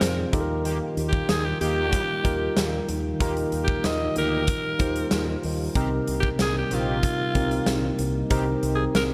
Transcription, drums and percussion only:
0.01 snare, closed hi-hat
0.33 kick, closed hi-hat
0.65 closed hi-hat
0.97 closed hi-hat
1.13 kick
1.29 snare, closed hi-hat
1.61 closed hi-hat
1.92 kick, closed hi-hat
2.25 kick, closed hi-hat
2.57 snare, closed hi-hat
2.89 closed hi-hat
3.20 kick, closed hi-hat
3.37 closed hi-hat
3.52 closed hi-hat
3.68 kick
3.84 snare, closed hi-hat
4.16 closed hi-hat
4.47 kick, closed hi-hat
4.79 kick, closed hi-hat
4.96 closed hi-hat
5.11 snare, closed hi-hat
5.43 open hi-hat
5.75 kick, closed hi-hat
6.07 closed hi-hat
6.23 kick
6.39 snare, closed hi-hat
6.71 closed hi-hat
7.03 kick, closed hi-hat
7.35 kick, closed hi-hat
7.51 closed hi-hat
7.66 snare, closed hi-hat
7.99 closed hi-hat
8.30 kick, closed hi-hat
8.63 closed hi-hat
8.95 snare, closed hi-hat

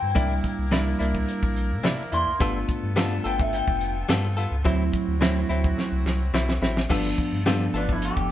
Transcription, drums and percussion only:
0.16 kick, closed hi-hat
0.44 kick, closed hi-hat
0.72 snare, closed hi-hat
1.00 closed hi-hat
1.15 kick
1.28 closed hi-hat
1.43 kick
1.56 closed hi-hat
1.84 snare, closed hi-hat
2.13 closed hi-hat
2.41 kick, closed hi-hat
2.69 kick, closed hi-hat
2.97 snare, closed hi-hat
3.25 closed hi-hat
3.40 kick
3.53 closed hi-hat
3.68 kick
3.81 closed hi-hat
4.09 snare, closed hi-hat
4.37 closed hi-hat
4.65 kick, closed hi-hat
4.93 kick, closed hi-hat
5.22 snare, closed hi-hat
5.50 closed hi-hat
5.64 kick
5.78 snare
6.06 snare
6.34 snare
6.49 snare
6.63 snare
6.77 snare
6.90 kick, crash
7.18 kick, closed hi-hat
7.46 snare, closed hi-hat
7.74 closed hi-hat
7.89 kick
8.02 closed hi-hat
8.17 kick

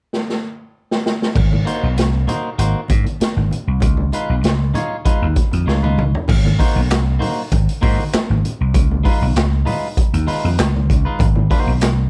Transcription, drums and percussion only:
0.13 snare
0.30 snare
0.91 snare
1.06 snare
1.22 snare
1.35 kick, crash, muted conga, low conga
1.52 high conga
1.66 closed hi-hat, muted conga
1.97 snare, closed hi-hat, muted conga
2.28 closed hi-hat, high conga, low conga
2.59 closed hi-hat, muted conga
2.88 kick, closed hi-hat, muted conga, high conga
3.04 closed hi-hat, high conga
3.20 snare, closed hi-hat, muted conga
3.37 high conga
3.51 closed hi-hat, muted conga, low conga
3.80 kick, closed hi-hat, muted conga, low conga
3.97 high conga
4.12 closed hi-hat, muted conga
4.43 snare, closed hi-hat, muted conga
4.74 closed hi-hat, muted conga, high conga, low conga
5.05 kick, closed hi-hat
5.36 kick, closed hi-hat, muted conga, high conga
5.51 closed hi-hat, high conga
5.68 snare
5.84 high tom, high conga
5.98 mid tom, muted conga, low conga
6.15 floor tom
6.28 kick, crash, muted conga, low conga
6.45 high conga
6.59 kick, open hi-hat, muted conga
6.76 high conga
6.90 snare, clap, closed hi-hat, muted conga
7.22 open hi-hat, high conga, low conga
7.52 kick, closed hi-hat
7.69 closed hi-hat
7.83 kick, open hi-hat, high conga
7.99 high conga
8.14 snare, clap, closed hi-hat, muted conga
8.31 high conga
8.45 closed hi-hat, muted conga, low conga
8.74 kick, closed hi-hat, muted conga, low conga
8.91 high conga
9.05 kick, open hi-hat, muted conga
9.23 high conga
9.36 snare, clap, closed hi-hat, muted conga
9.67 open hi-hat, high conga, low conga
9.97 kick, closed hi-hat
10.14 closed hi-hat
10.27 open hi-hat, high conga
10.44 high conga
10.59 snare, clap, closed hi-hat
10.76 high conga
10.90 kick, closed hi-hat, muted conga, low conga
11.19 kick, closed hi-hat, muted conga, low conga
11.36 high conga
11.51 kick, open hi-hat
11.67 high conga
11.80 snare, clap, closed hi-hat, muted conga

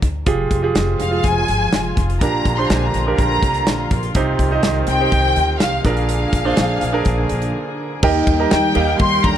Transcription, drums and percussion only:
0.02 kick, closed hi-hat
0.26 kick, closed hi-hat
0.51 kick, closed hi-hat
0.75 snare, closed hi-hat
1.00 closed hi-hat
1.24 kick, closed hi-hat
1.48 closed hi-hat
1.73 snare, closed hi-hat
1.97 kick, closed hi-hat
2.10 closed hi-hat
2.21 kick, closed hi-hat
2.45 kick, closed hi-hat
2.70 snare, closed hi-hat
2.94 closed hi-hat
3.18 kick, closed hi-hat
3.43 kick, closed hi-hat
3.54 closed hi-hat
3.67 snare, closed hi-hat
3.91 kick, closed hi-hat
4.03 closed hi-hat
4.15 kick, closed hi-hat
4.39 kick, closed hi-hat
4.63 snare, closed hi-hat
4.87 closed hi-hat
5.12 kick, closed hi-hat
5.36 closed hi-hat
5.60 snare, closed hi-hat
5.85 kick, snare, closed hi-hat
5.97 closed hi-hat
6.09 closed hi-hat
6.33 kick, closed hi-hat
6.57 snare, closed hi-hat
6.81 closed hi-hat
7.05 kick, closed hi-hat
7.29 closed hi-hat
7.42 closed hi-hat
8.03 kick, crash
8.27 kick, ride
8.51 snare, ride
8.75 ride
8.99 kick, ride
9.24 kick, ride

